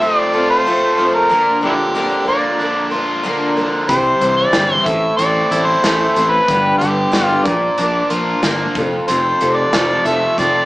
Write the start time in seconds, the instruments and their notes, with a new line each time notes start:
Already playing: overdriven electric guitar F2 C3 F3 A3 F4
0.01 twelve-string acoustic guitar F3 C4 F4 A4, overdriven electric guitar C4, harmonica D5
0.33 twelve-string acoustic guitar C4 F4 A4, overdriven electric guitar F4
0.51 harmonica C5
0.66 twelve-string acoustic guitar F3 C4 F4 A4, overdriven electric guitar A3
0.98 overdriven electric guitar F3, twelve-string acoustic guitar C4 F4 A4
1.15 harmonica A#4
1.30 twelve-string acoustic guitar A#2 D3 F3 A#3 D4 A#4, overdriven electric guitar A#2
1.61 overdriven electric guitar D3, twelve-string acoustic guitar F3 A#3 D4 A#4
1.65 harmonica D4 E4 G4
1.95 twelve-string acoustic guitar A#2 D3 F3 A#3 D4 A#4, overdriven electric guitar D3
2.25 overdriven electric guitar A#3, twelve-string acoustic guitar A#3 D4 A#4, harmonica D5
2.29 twelve-string acoustic guitar F3
2.59 twelve-string acoustic guitar F3 A#3 D4 A#4, overdriven electric guitar D4
2.91 twelve-string acoustic guitar F3 A#3 D4 A#4, overdriven electric guitar F4
3.23 twelve-string acoustic guitar A#2 D3 F3 A#3 D4 A#4, overdriven electric guitar A#3
3.56 overdriven electric guitar D3, twelve-string acoustic guitar F3 A#3 D4 A#4
3.88 fingered electric bass C2, overdriven electric guitar C3, twelve-string acoustic guitar C3 G3 C4 E4 C5, harmonica C5, kick, closed hi-hat
4.21 fingered electric bass C2, overdriven electric guitar E3, twelve-string acoustic guitar C4 E4 C5, closed hi-hat
4.37 harmonica D5
4.52 fingered electric bass G1, twelve-string acoustic guitar C3 G3 C4 E4 C5, overdriven electric guitar E3, snare, closed hi-hat
4.74 harmonica C5
4.85 fingered electric bass A1, overdriven electric guitar A2, twelve-string acoustic guitar A3 C4 E4 A4, harmonica E5, kick, closed hi-hat
5.17 fingered electric bass A1, twelve-string acoustic guitar A3 C4 E4, overdriven electric guitar C4, harmonica D5, closed hi-hat
5.21 twelve-string acoustic guitar A4
5.51 fingered electric bass A1, twelve-string acoustic guitar A3 C4 E4 A4, overdriven electric guitar E4, closed hi-hat
5.66 harmonica C5
5.83 fingered electric bass A1, twelve-string acoustic guitar A2 E3 A3 C4 E4 A4, overdriven electric guitar A3, snare, closed hi-hat
6.15 fingered electric bass A1, overdriven electric guitar E3, twelve-string acoustic guitar C4 E4 A4, closed hi-hat
6.19 twelve-string acoustic guitar A3
6.30 harmonica B4
6.48 fingered electric bass G1, overdriven electric guitar G2, twelve-string acoustic guitar G2 D3 G3 B3 D4 G4, kick, closed hi-hat
6.78 overdriven electric guitar D3, twelve-string acoustic guitar D4 G4, harmonica G4, closed hi-hat
6.82 fingered electric bass G1, twelve-string acoustic guitar G3 B3
7.12 fingered electric bass G1, twelve-string acoustic guitar G2 D3 G3 B3 D4 G4, overdriven electric guitar G3, snare, closed hi-hat
7.25 harmonica F4
7.44 fingered electric bass A#1, overdriven electric guitar A#2, twelve-string acoustic guitar F3 A#3 D4 A#4, harmonica D5, kick, closed hi-hat
7.77 fingered electric bass A#1, twelve-string acoustic guitar F3 A#3 D4 A#4, overdriven electric guitar D4, closed hi-hat
8.10 fingered electric bass A#1, twelve-string acoustic guitar F3 A#3 D4 A#4, overdriven electric guitar F4, closed hi-hat
8.42 fingered electric bass G1, twelve-string acoustic guitar A#2 D3 F3 A#3 D4 A#4, overdriven electric guitar A#3, snare, closed hi-hat
8.75 fingered electric bass F1, overdriven electric guitar F2, twelve-string acoustic guitar F4 A4, kick, closed hi-hat
8.80 twelve-string acoustic guitar C4
9.08 fingered electric bass F1, overdriven electric guitar F2, twelve-string acoustic guitar F3 C4 F4 A4, harmonica C5, closed hi-hat
9.41 fingered electric bass F1, overdriven electric guitar C3, twelve-string acoustic guitar C4 F4 A4, closed hi-hat
9.56 harmonica D5
9.73 fingered electric bass F1, twelve-string acoustic guitar F3 C4 F4 A4, overdriven electric guitar F3, snare, closed hi-hat
10.05 fingered electric bass F1, overdriven electric guitar A3, twelve-string acoustic guitar C4 F4 A4, harmonica E5, closed hi-hat
10.38 fingered electric bass F1, twelve-string acoustic guitar F3 C4 F4 A4, overdriven electric guitar C4, harmonica D5, kick, closed hi-hat